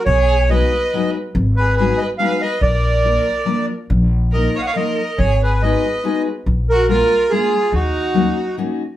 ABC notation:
X:1
M:3/4
L:1/16
Q:"Swing" 1/4=141
K:Bbphr
V:1 name="Accordion"
d4 ^d6 z2 | z2 c2 c2 e2 f2 e2 | =d8- d2 z2 | z4 e2 f/2 g/2 f e4 |
d2 c2 e6 z2 | z2 B2 B4 A4 | G8 z4 |]
V:2 name="Violin"
^G4 =B6 z2 | z2 A2 A2 c2 c2 c2 | B8- B2 z2 | z4 B2 d/2 e/2 d B4 |
A2 A2 c6 z2 | z2 G2 F4 F4 | E8 z4 |]
V:3 name="Steel-string acoustic guitar"
z4 [^F,^G,=B,^D^F]2 z2 [F,G,B,DF]2 z2 | z4 [G,A,CEG]2 z2 [G,A,CEG]2 z2 | z4 [F,B,=DFB]2 z2 [F,B,DFB]2 z2 | z4 [F,B,EFB]2 z2 [F,B,EFB]2 z2 |
z4 [A,CEGA]2 z2 [A,CEGA]2 z2 | z4 [A,B,=DFA]2 z2 [A,B,DFA]2 z2 | z4 [G,B,DEG]2 z2 [G,B,DEG]2 z2 |]
V:4 name="Upright bass" clef=bass
=B,,,8 z4 | A,,,8 z4 | B,,,8 z4 | B,,,8 z4 |
A,,,8 z4 | B,,,8 z4 | E,,8 z4 |]